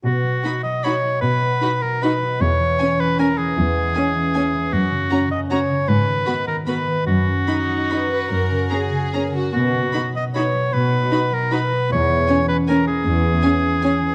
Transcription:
X:1
M:3/4
L:1/8
Q:1/4=152
K:B
V:1 name="Violin section"
z2 b2 b2 | z2 b2 b2 | z2 g2 g2 | z2 g2 g2 |
z2 a2 a2 | z2 b2 b2 | z2 b2 b2 | z2 a2 a2 |
z2 b2 b2 | z2 b2 b2 | z2 g2 g2 | z2 g2 g2 |]
V:2 name="Oboe"
F3 d c2 | B3 A B2 | c3 B A G- | G6 |
F3 d c2 | B3 A B2 | F6- | F4 z2 |
F3 d c2 | B3 A B2 | c3 B A G- | G6 |]
V:3 name="Violin section"
z2 F2 F2 | z2 F2 F2 | z2 C2 C2 | z2 C2 C2 |
z2 F2 F2 | z2 F2 F2 | z2 D3 B | A2 G3 F |
z2 F2 F2 | z2 F2 F2 | z2 C2 C2 | z2 C2 C2 |]
V:4 name="Viola section"
z2 D2 D2 | z2 D2 D2 | z2 C2 C2 | z2 C2 C2 |
z2 C2 C2 | z2 B,2 B,2 | z2 D2 D2 | z2 C2 C2 |
z2 D2 D2 | z2 D2 D2 | z2 C2 C2 | z2 C2 C2 |]
V:5 name="Harp" clef=bass
B,, F, F F, d F, | B,, B, F F, d F, | E,, E, C E,2 E, | E,, G, C E, c E, |
F,, C, F C,2 C, | G,, D, F D, B D, | F,, F, F F, B F, | F,, C, F C, A C, |
B,, F, F F, B F, | B,, D F F, B F, | E,, E, C E, G E, | E,, C E, C G E, |]
V:6 name="Cello section" clef=bass
B,,2 z4 | B,,2 z4 | E,,2 z4 | E,,2 z4 |
F,,2 z4 | G,,2 z4 | F,,2 z4 | F,,2 z4 |
B,,2 z4 | B,,2 z4 | E,,2 z4 | E,,2 z4 |]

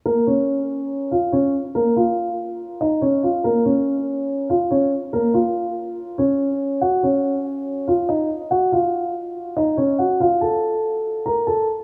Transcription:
X:1
M:4/4
L:1/8
Q:1/4=142
K:Bbm
V:1 name="Grand piano"
[B,B] [Dd]4 [Ff] [Dd] z | [B,B] [Ff]4 [Ee] [Dd] [Ff] | [B,B] [Dd]4 [Ff] [Dd] z | [B,B] [Ff]4 [Dd]3 |
[Gg] [Dd]4 [Ff] [Ee] z | [Gg] [Ff]4 [Ee] [Dd] [Gg] | [Ff] [=A=a]4 [Bb] [Aa] z |]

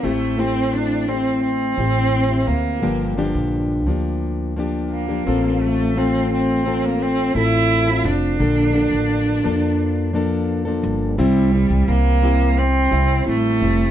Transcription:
X:1
M:4/4
L:1/16
Q:1/4=86
K:Cmix
V:1 name="Cello"
A,2 C2 D2 C2 C6 B,2- | B,2 z8 z2 B,4 | A,2 C2 C3 B, C2 E4 D2- | D12 z4 |
G,4 B,4 C4 A,4 |]
V:2 name="Steel-string acoustic guitar"
[A,CEG]2 [A,CEG]4 [A,CEG]4 [A,CEG]3 [CEG]3 | [G,,D,F,B,DG]2 [G,,D,F,B,DG]4 [F,B,DG]4 [F,B,DG]3 [F,B,DG] [CFA]2- | [CFA]2 [A,CFA]4 [A,CFA]4 [A,CA]3 [CFA]3 | [B,,D,F,B,DA]2 [D,F,B,DA]4 [F,B,DA]4 [F,B,DA]3 [F,B,DA]3 |
[C,G,CEG]2 [G,CEG]4 [G,CEG]4 [G,CEG]2 [G,CEG]2 [G,CEG]2 |]
V:3 name="Upright bass" clef=bass
A,,,8- A,,,2 A,,,4 D,,2 | G,,,3 B,,,3 D,,8 A,,,2- | A,,,8- A,,,2 A,,,4 F,,,2 | B,,,3 A,,,3 F,,8 G,,,2 |
C,,3 C,, C,,6 C,,2 A,,,2 F,,,2 |]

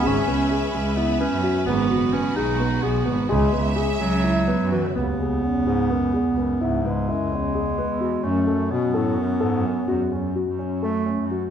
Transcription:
X:1
M:7/8
L:1/16
Q:1/4=128
K:C#m
V:1 name="String section"
[CBe]12- [CBe]2 | [G,F]12- [G,F]2 | [Ce]12- [Ce]2 | z12 z2 |
z12 z2 | z12 z2 | z12 z2 |]
V:2 name="Grand piano"
G2 B,2 G2 G,2 E2 B,2 F2 | B,2 F2 B,2 G2 B,2 G2 B,2 | G2 B,2 G2 G,2 E2 B,2 F2 | B,2 G2 C2 G2 B,2 G2 B,2 |
E2 B,2 E2 C2 G2 B,2 F2 | C2 A2 C2 A2 C2 A2 C2 | F2 C2 F2 C2 A2 C2 F2 |]
V:3 name="Clarinet"
C8 B,2 C4 | B,4 C2 D4 B,4 | G,4 z2 F,6 E,2 | B,12- B,2- |
B,2 G,12 | A,4 B,8- B,2- | B,6 z2 A,4 z2 |]
V:4 name="Bass clarinet" clef=bass
C6 z8 | z12 z2 | z12 z2 | D,,4 E,,2 G,,2 F,,2 E,,2 F,,2 |
G,,4 F,,2 E,,6 z2 | F,,4 B,,2 A,,2 F,,2 G,,2 F,,2 | E,,4 z8 z2 |]
V:5 name="Double bass" clef=bass
G,,,2 C,,4 C,,4- C,, F,,2 z | G,,, z F,,,4 B,,,4 B,,,2 G,,, z | C,,2 C,,4 C,,4- C,, F,,2 z | C,, z C,,3 C,,6 C,,3 |
C,, z C,,3 C,,6 E,,3 | F,, z F,,3 F,,6 F,,3 | F,, z F,,3 F,,6 F,,3 |]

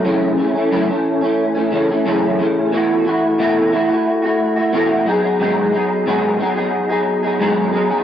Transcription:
X:1
M:4/4
L:1/16
Q:1/4=90
K:Bmix
V:1 name="Clean electric guitar"
[F,,C,E,A,C]2 [C,E,A,C] [E,A,C] [F,,C,E,A,C] [E,A,C]2 [E,A,C]2 [E,A,C] [C,E,A,C] [E,A,C] [F,,C,E,A,C]2 [C,E,A,C]2 | [B,,E,A,EF]2 [E,A,EF]2 [B,,E,A,EF]2 [E,A,EF] [A,EF]2 [A,EF]2 [A,EF] [B,,E,A,EF]2 [F,B,DG] [F,B,DG] | [G,,D,F,B,DG]2 [F,B,DG]2 [G,,D,F,B,DG]2 [F,B,DG] [F,B,DG]2 [F,B,DG]2 [F,B,DG] [G,,D,F,B,DG]2 [F,B,DG] [F,B,DG] |]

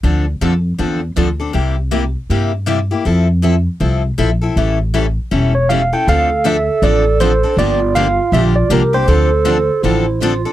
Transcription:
X:1
M:4/4
L:1/16
Q:"Swing" 1/4=159
K:Dm
V:1 name="Tine electric piano"
z16 | z16 | z16 | z8 z2 ^c2 f2 g2 |
f4 e4 d4 c4 | d4 f4 e2 d2 B2 c2- | c12- c2 z2 |]
V:2 name="Clarinet"
z16 | z16 | z16 | z16 |
A16 | F12 G4 | A8 E4 F4 |]
V:3 name="Steel-string acoustic guitar"
[D,F,CDA]2 z2 [D,F,CDA] z3 [D,F,CDA]2 z2 [D,F,CDA] z [CDA]2 | [C,G,B,EG]2 z2 [C,G,B,EG] z3 [C,G,B,EG]2 z2 [C,G,B,EG] z [B,EG]2 | [F,CEA]2 z2 [F,CEA] z3 [F,CEA]2 z2 [F,CEA] z [CEA]2 | [E,G,^CEA]2 z2 [E,G,CEA] z3 [E,G,CEA]2 z2 [E,G,CEA] z [CEA]2 |
[D,F,CDA]2 z2 [D,F,CDA] z3 [D,F,CDA]2 z2 [D,F,CDA] z [CDA]2 | [D,F,B,DG]2 z2 [D,F,B,DG] z3 [D,F,B,DG]2 z2 [D,F,B,DG] z [B,DG]2 | [D,F,CDA]2 z2 [D,F,CDA] z3 [D,F,CDA]2 z2 [D,F,CDA] z [CDA]2 |]
V:4 name="Steel-string acoustic guitar"
[D,F,CDA]2 z2 [D,F,CDA] z3 [D,F,CDA]2 z2 [D,F,CDA] z3 | [C,G,B,EG]2 z2 [C,G,B,EG] z3 [C,G,B,EG]2 z2 [C,G,B,EG] z3 | [F,CEA]2 z2 [F,CEA] z3 [F,CEA]2 z2 [F,CEA] z3 | [E,G,^CEA]2 z2 [E,G,CEA] z3 [E,G,CEA]2 z2 [E,G,CEA] z3 |
[D,F,CDA]2 z2 [D,F,CDA] z3 [D,F,CDA]2 z2 [D,F,CDA] z3 | [D,F,B,DG]2 z2 [D,F,B,DG] z3 [D,F,B,DG]2 z2 [D,F,B,DG] z3 | [D,F,CDA]2 z2 [D,F,CDA] z3 [D,F,CDA]2 z2 [D,F,CDA] z3 |]
V:5 name="Upright bass" clef=bass
D,,4 F,,4 E,,4 D,,4 | C,,8 G,,8 | F,,8 C,,4 B,,,4 | A,,,8 E,,,8 |
D,,8 A,,,8 | G,,,8 B,,,4 C,,4 | D,,8 A,,,8 |]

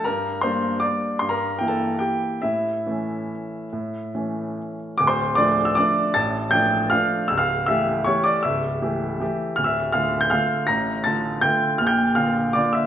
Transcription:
X:1
M:3/4
L:1/16
Q:1/4=156
K:Dm
V:1 name="Grand piano"
[Bb]4 [cc']4 [dd']4 | c' [Bb]3 g [Aa]3 [Gg]4 | [Ee]12- | [Ee]8- [Ee]2 z2 |
d' [cc']3 [dd']3 e' [dd']4 | [aa']4 [gg']4 [ff']4 | e' [ff']3 [ee']4 [^c^c']2 [dd']2 | [ee']8- [ee']2 z2 |
f' [ee']3 [ff']3 g' [ff']4 | [bb']4 [aa']4 [gg']4 | f' [gg']3 [ff']4 [dd']2 [ee']2 |]
V:2 name="Grand piano" clef=bass
G,,4 [G,B,D]8 | G,,4 [E,B,E]8 | A,,4 [E,A,^C]8 | A,,4 [E,A,^C]8 |
[D,,,D,,]4 [F,A,D]4 [F,A,D]4 | [A,,,A,,]4 [F,A,D]4 [F,A,D]4 | [^C,,,^C,,]4 [E,A,G]4 [E,A,G]4 | [^C,,,^C,,]4 [E,A,G]4 [E,A,G]4 |
[D,,,D,,]4 [D,A,F]4 [D,A,F]4 | [A,,,A,,]4 [D,A,F]4 [D,A,F]4 | [B,,,B,,]4 [D,B,F]4 [D,B,F]4 |]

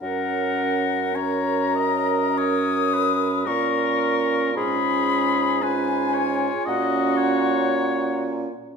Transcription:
X:1
M:4/4
L:1/16
Q:1/4=56
K:F#
V:1 name="Flute"
f4 a4 d'4 c'4 | b4 g4 f6 z2 |]
V:2 name="Oboe"
A4 c2 d2 c2 B2 A4 | G4 B2 c2 d2 c4- c z |]
V:3 name="Clarinet"
A4 A8 A4 | E4 E4 F6- F z |]
V:4 name="French horn"
C4 C8 C4 | C4 C4 C6- C z |]
V:5 name="Bassoon" clef=bass
F,,12 A,,4 | G,,8 A,,6- A,, z |]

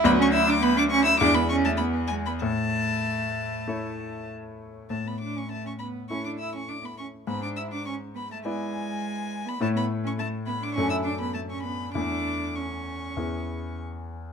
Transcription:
X:1
M:4/4
L:1/16
Q:1/4=101
K:A
V:1 name="Violin"
b c' e' d' b d' c' e' d' b c' a b2 g b | a12 z4 | a b d' c' a c' b2 c' d' e' c' d' b c'2 | b d' e' d' c'2 b a g6- g b |
a b2 c' a2 b d' c' e' d' b a c' b2 | d'4 c'8 z4 |]
V:2 name="Cello"
B, C E D B, D C E D B, C A, B,2 G, B, | A,12 z4 | A, B, D C A, C B,2 C D E C D B, C2 | B, D E D C2 B, A, G,6- G, B, |
A, B,2 C A,2 B, D C E D B, A, C B,2 | D4 C8 z4 |]
V:3 name="Grand piano"
[D,,F,Fd]8 [E,,G,Ed]8 | A,,8 [A,Ec]8 | A,,8 [A,Ec]8 | G,,8 [B,Ed]8 |
[A,,A,Ec]8 [F,,A,DA]8 | [E,,A,EA]8 [E,,B,EG]8 |]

